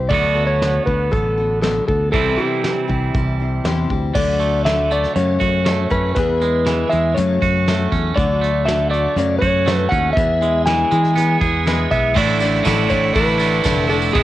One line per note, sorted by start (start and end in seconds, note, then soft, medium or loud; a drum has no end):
0.00 0.11 C5 medium
0.09 0.78 D2 loud
0.09 0.35 D3 medium
0.09 2.11 D3 medium
0.09 0.35 F#3 medium
0.09 2.12 A3 medium
0.09 0.35 B3 medium
0.09 2.13 B3 medium
0.09 0.35 F#4 medium
0.09 0.34 A4 medium
0.09 0.46 D5 medium
0.09 kick loud
0.09 closed hi-hat medium
0.14 2.14 F#4 medium
0.35 0.87 D3 soft
0.35 0.87 F#3 medium
0.35 0.87 B3 medium
0.35 0.86 F#4 medium
0.35 0.85 A4 medium
0.47 0.85 C#5 medium
0.62 snare medium
0.62 closed hi-hat medium
0.86 1.09 D2 medium
0.86 1.11 B3 soft
0.86 1.11 F#4 soft
0.86 1.12 A4 medium
0.86 1.12 B4 medium
0.86 kick medium
1.11 1.80 A1 medium
1.11 1.37 F#3 medium
1.11 1.37 B3 medium
1.11 1.37 F#4 medium
1.11 1.61 A4 medium
1.11 1.36 A4 medium
1.11 kick loud
1.11 closed hi-hat medium
1.37 1.62 B3 soft
1.37 1.62 F#4 soft
1.37 1.62 A4 soft
1.62 1.88 D3 medium
1.62 1.88 F#3 medium
1.62 1.88 B3 medium
1.62 1.87 F#4 medium
1.62 1.86 A4 medium
1.62 1.87 A4 medium
1.62 snare loud
1.62 closed hi-hat medium
1.88 2.11 D2 medium
1.88 2.13 B3 soft
1.88 2.13 F#4 soft
1.88 2.11 A4 medium
1.88 2.13 A4 medium
1.88 kick medium
2.12 2.36 C2 medium
2.12 4.13 C3 medium
2.12 2.38 C3 medium
2.12 4.14 E3 medium
2.12 2.38 E3 medium
2.12 4.14 G3 medium
2.12 2.38 C4 medium
2.12 4.14 C4 medium
2.12 2.38 E4 medium
2.12 4.15 E4 medium
2.12 2.38 G4 medium
2.12 2.39 A4 medium
2.12 kick loud
2.12 closed hi-hat medium
2.37 2.90 C3 medium
2.37 2.89 E3 soft
2.37 2.89 C4 medium
2.37 2.87 E4 medium
2.37 2.85 G4 medium
2.37 2.86 G4 medium
2.64 snare medium
2.64 closed hi-hat medium
2.88 3.12 C2 medium
2.88 3.13 C4 soft
2.88 3.14 E4 soft
2.88 3.14 G4 medium
2.88 kick medium
3.14 3.59 C2 medium
3.14 3.39 E3 medium
3.14 3.40 C4 medium
3.14 3.40 E4 medium
3.14 3.38 G4 medium
3.14 kick loud
3.14 closed hi-hat medium
3.40 3.64 C4 soft
3.40 3.65 E4 soft
3.40 3.65 G4 soft
3.64 3.87 E2 medium
3.64 3.90 C3 medium
3.64 3.90 E3 medium
3.64 3.90 C4 medium
3.64 3.91 E4 medium
3.64 3.90 G4 medium
3.64 snare loud
3.64 closed hi-hat medium
3.90 4.13 D2 medium
3.90 4.16 C4 soft
3.90 4.16 E4 soft
3.90 4.16 G4 medium
3.90 kick medium
4.14 5.05 D2 medium
4.14 4.64 D3 medium
4.14 4.66 D3 medium
4.14 4.64 F#3 medium
4.14 5.14 A3 medium
4.14 4.66 A3 medium
4.14 5.15 D4 medium
4.14 4.66 D4 medium
4.14 4.61 F#4 medium
4.14 5.14 F#4 medium
4.14 4.66 F#4 medium
4.14 5.14 A4 medium
4.14 4.61 A4 medium
4.14 4.65 D5 medium
4.14 4.61 D5 medium
4.14 kick loud
4.14 crash loud
4.40 4.90 A3 medium
4.40 closed hi-hat medium
4.65 5.16 D3 medium
4.65 5.16 F#3 medium
4.65 5.16 A3 medium
4.65 5.17 D4 medium
4.65 5.11 F#4 medium
4.65 5.17 F#4 medium
4.65 5.11 A4 medium
4.65 5.11 D5 medium
4.65 4.91 E5 medium
4.65 snare medium
4.65 closed hi-hat medium
4.91 5.16 A3 medium
4.91 5.15 D5 medium
4.91 closed hi-hat medium
5.04 snare soft
5.15 6.16 F#2 medium
5.15 5.38 F#2 medium
5.15 5.66 F#2 medium
5.15 5.66 C#3 medium
5.15 5.65 F#3 medium
5.15 5.66 A3 medium
5.15 6.15 C#4 medium
5.15 5.66 C#4 medium
5.15 6.15 F#4 medium
5.15 5.61 F#4 medium
5.15 5.67 F#4 medium
5.15 6.15 A4 medium
5.15 5.61 A4 medium
5.15 5.91 C#5 medium
5.15 5.61 C#5 medium
5.15 closed hi-hat medium
5.40 5.86 F#2 medium
5.40 6.16 F#4 medium
5.40 kick medium
5.40 closed hi-hat medium
5.65 6.16 F#3 medium
5.65 6.16 A3 medium
5.65 6.17 A3 medium
5.65 6.17 C#4 medium
5.65 6.12 F#4 medium
5.65 6.18 F#4 medium
5.65 6.12 A4 medium
5.65 6.12 C#5 medium
5.65 snare loud
5.65 closed hi-hat medium
5.90 6.14 F#2 medium
5.90 6.16 C#4 medium
5.90 6.14 B4 medium
5.90 kick medium
5.90 closed hi-hat medium
6.15 7.16 E2 medium
6.15 6.84 E2 medium
6.15 6.41 E3 medium
6.15 7.16 G#3 medium
6.15 6.42 B3 medium
6.15 6.62 E4 medium
6.15 6.41 E4 medium
6.15 7.16 E4 medium
6.15 7.16 G#4 medium
6.15 6.62 G#4 medium
6.15 6.40 G#4 medium
6.15 6.93 B4 medium
6.15 6.62 B4 medium
6.15 kick loud
6.15 closed hi-hat medium
6.41 6.89 G#3 medium
6.41 6.65 B3 soft
6.41 6.65 E4 soft
6.41 6.66 G#4 soft
6.41 closed hi-hat medium
6.65 6.91 E3 medium
6.65 7.16 E3 medium
6.65 6.91 B3 medium
6.65 6.90 E4 medium
6.65 6.89 G#4 medium
6.65 7.13 B4 medium
6.65 snare loud
6.65 closed hi-hat medium
6.69 7.13 E4 medium
6.69 7.13 G#4 medium
6.90 7.15 E2 medium
6.90 7.16 G#3 medium
6.90 7.17 B3 soft
6.90 7.17 E4 soft
6.90 7.16 G#4 soft
6.90 7.16 E5 medium
6.90 closed hi-hat medium
7.14 8.16 F#2 medium
7.14 7.67 F#2 medium
7.14 7.67 C#3 medium
7.14 7.65 F#3 medium
7.14 7.66 A3 medium
7.14 7.67 C#4 medium
7.14 7.62 F#4 medium
7.14 7.67 F#4 medium
7.14 7.62 A4 medium
7.14 8.17 A4 medium
7.14 7.87 C#5 medium
7.14 7.62 C#5 medium
7.14 closed hi-hat loud
7.19 7.40 F#2 medium
7.42 7.87 F#2 medium
7.42 8.17 F#4 medium
7.42 kick medium
7.42 closed hi-hat medium
7.66 8.16 F#3 medium
7.66 8.16 A3 medium
7.66 8.17 A3 medium
7.66 8.17 C#4 medium
7.66 8.12 F#4 medium
7.66 8.18 F#4 medium
7.66 8.12 A4 medium
7.66 8.13 E5 medium
7.66 snare loud
7.66 closed hi-hat medium
7.92 8.14 E2 medium
7.92 8.17 C#4 medium
7.92 kick medium
7.92 closed hi-hat medium
8.16 9.06 D2 medium
8.16 8.65 D3 medium
8.16 8.67 D3 medium
8.16 8.65 F#3 medium
8.16 8.66 A3 medium
8.16 8.67 D4 medium
8.16 8.62 F#4 medium
8.16 9.15 F#4 medium
8.16 8.67 F#4 medium
8.16 8.62 A4 medium
8.16 9.14 A4 medium
8.16 8.68 D5 medium
8.16 8.62 D5 medium
8.16 kick loud
8.16 closed hi-hat medium
8.41 8.89 A3 medium
8.41 closed hi-hat medium
8.65 9.17 D3 medium
8.65 9.16 F#3 medium
8.65 9.16 A3 medium
8.65 9.17 D4 medium
8.65 9.11 F#4 medium
8.65 9.17 F#4 medium
8.65 9.12 A4 medium
8.65 9.12 D5 medium
8.65 8.90 E5 medium
8.65 snare loud
8.65 closed hi-hat medium
8.90 9.16 A3 medium
8.90 9.38 D5 medium
8.90 closed hi-hat medium
9.16 9.39 F#2 medium
9.16 9.67 F#2 medium
9.16 10.16 F#2 medium
9.16 9.67 C#3 medium
9.16 9.65 F#3 medium
9.16 10.15 A3 medium
9.16 9.66 A3 medium
9.16 10.15 C#4 medium
9.16 9.67 C#4 medium
9.16 10.15 F#4 medium
9.16 9.62 F#4 medium
9.16 9.67 F#4 medium
9.16 10.15 A4 medium
9.16 9.62 A4 medium
9.16 9.62 C#5 medium
9.16 closed hi-hat medium
9.39 9.86 F#2 medium
9.39 10.16 F#4 medium
9.39 9.86 C#5 medium
9.39 kick medium
9.43 closed hi-hat medium
9.66 10.16 F#3 medium
9.66 10.16 A3 medium
9.66 10.17 A3 medium
9.66 10.17 C#4 medium
9.66 10.11 F#4 medium
9.66 10.18 F#4 medium
9.66 10.12 A4 medium
9.66 10.12 C#5 medium
9.66 snare loud
9.66 closed hi-hat medium
9.89 10.14 D#2 medium
9.89 10.16 C#4 medium
9.89 10.13 F#5 medium
9.89 kick medium
9.89 closed hi-hat medium
10.13 11.41 E2 medium
10.13 10.83 E2 loud
10.13 10.42 E3 medium
10.13 12.14 G#3 medium
10.13 12.14 B3 medium
10.13 12.14 E4 medium
10.13 10.61 E4 medium
10.13 12.14 G#4 medium
10.13 10.65 E5 loud
10.17 10.42 B3 medium
10.17 10.41 E4 medium
10.17 10.62 G#4 medium
10.17 10.40 G#4 medium
10.17 10.62 B4 medium
10.17 kick loud
10.17 closed hi-hat medium
10.41 10.90 G#3 medium
10.41 10.65 B3 soft
10.41 10.66 E4 soft
10.41 10.66 G#4 soft
10.41 closed hi-hat medium
10.66 10.91 E3 medium
10.66 11.92 E3 medium
10.66 10.91 B3 medium
10.66 11.11 E4 medium
10.66 10.91 E4 medium
10.66 11.12 G#4 medium
10.66 10.90 G#4 medium
10.66 11.12 B4 medium
10.66 11.37 G#5 loud
10.66 snare loud
10.66 closed hi-hat medium
10.91 11.36 E3 medium
10.91 11.65 G#3 medium
10.91 11.14 B3 soft
10.91 11.15 E4 soft
10.91 11.16 G#4 soft
10.91 closed hi-hat medium
11.04 snare soft
11.15 11.64 E3 medium
11.15 11.90 B3 medium
11.15 11.66 B3 medium
11.15 11.60 E4 medium
11.15 11.65 E4 medium
11.15 11.61 G#4 medium
11.15 11.66 G#4 medium
11.15 11.61 B4 medium
11.15 closed hi-hat loud
11.41 11.85 E2 medium
11.41 12.16 G#4 medium
11.41 kick medium
11.41 closed hi-hat medium
11.65 12.13 E3 medium
11.65 12.16 G#3 medium
11.65 12.14 B3 medium
11.65 12.11 E4 medium
11.65 12.15 E4 medium
11.65 12.11 G#4 medium
11.65 12.15 G#4 medium
11.65 12.11 B4 loud
11.65 snare loud
11.65 closed hi-hat medium
11.91 12.14 B1 medium
11.91 12.16 B3 medium
11.91 12.17 E5 loud
11.91 kick medium
11.91 closed hi-hat medium
12.14 12.60 A1 loud
12.14 12.40 A2 medium
12.14 12.62 A2 medium
12.14 12.40 D3 medium
12.14 12.63 D3 loud
12.14 12.40 E3 medium
12.14 12.40 A3 medium
12.14 14.13 A3 medium
12.14 12.41 A3 loud
12.14 12.40 D4 medium
12.14 14.13 D4 medium
12.14 12.40 D4 loud
12.14 12.60 E4 medium
12.14 12.38 E4 loud
12.14 12.39 A4 medium
12.14 12.63 D5 loud
12.14 kick loud
12.14 crash loud
12.39 12.64 E3 soft
12.39 12.64 A3 soft
12.39 12.64 A3 medium
12.39 12.65 D4 medium
12.39 12.64 D4 soft
12.39 12.66 E4 medium
12.39 12.65 A4 medium
12.39 snare soft
12.39 ride medium
12.39 tambourine medium
12.55 snare soft
12.63 12.88 A1 medium
12.63 13.14 A2 medium
12.63 12.90 A2 medium
12.63 13.12 D3 medium
12.63 12.90 D3 medium
12.63 12.90 E3 medium
12.63 12.91 A3 loud
12.63 12.90 A3 medium
12.63 12.89 D4 medium
12.63 13.10 E4 medium
12.63 12.88 E4 loud
12.63 13.10 A4 medium
12.63 12.88 A4 medium
12.63 13.10 D5 medium
12.63 kick medium
12.63 ride medium
12.63 tambourine medium
12.67 snare loud
12.89 13.13 A1 medium
12.89 13.14 E3 soft
12.89 13.15 A3 medium
12.89 13.12 A3 medium
12.89 13.15 D4 soft
12.89 13.14 D4 medium
12.89 13.15 E4 medium
12.89 13.15 A4 medium
12.89 13.15 C#5 medium
12.89 kick medium
12.89 ride medium
12.89 tambourine medium
13.13 13.60 A1 loud
13.13 13.40 D3 medium
13.13 13.63 E3 medium
13.13 13.39 A3 medium
13.13 13.63 A3 medium
13.13 13.38 D4 medium
13.13 13.60 E4 medium
13.13 13.37 E4 medium
13.13 13.60 A4 medium
13.13 13.89 B4 medium
13.13 13.60 D5 medium
13.13 kick loud
13.13 ride loud
13.13 tambourine soft
13.17 13.64 A4 medium
13.27 tambourine soft
13.38 13.91 A2 medium
13.38 13.61 D3 medium
13.38 13.62 A3 medium
13.38 13.64 D4 medium
13.38 13.65 E4 medium
13.38 ride medium
13.38 tambourine medium
13.52 tambourine soft
13.62 14.10 F1 medium
13.62 13.89 A2 medium
13.62 14.12 D3 medium
13.62 13.90 D3 medium
13.62 13.90 E3 medium
13.62 13.89 A3 medium
13.62 13.90 A3 medium
13.62 13.88 D4 medium
13.62 13.89 D4 medium
13.62 14.10 E4 medium
13.62 13.86 E4 medium
13.62 13.88 A4 medium
13.62 14.10 A4 medium
13.62 14.10 D5 medium
13.62 kick medium
13.62 snare loud
13.62 ride loud
13.62 tambourine loud
13.87 14.14 E3 soft
13.87 14.14 A3 medium
13.87 14.15 A3 medium
13.87 14.13 D4 medium
13.87 14.15 D4 medium
13.87 14.12 E4 medium
13.87 13.96 A4 medium
13.87 14.15 A4 medium
13.87 ride medium
14.02 tambourine medium
14.12 14.23 E1 medium
14.12 14.23 E2 medium
14.12 14.23 B2 medium
14.12 14.23 E3 loud
14.12 14.23 E3 medium
14.12 14.23 G#3 loud
14.12 14.23 B3 medium
14.12 14.23 B3 loud
14.12 14.23 E4 medium
14.12 14.23 E4 loud
14.12 14.23 G#4 medium
14.12 14.23 B4 medium
14.12 kick loud
14.12 ride loud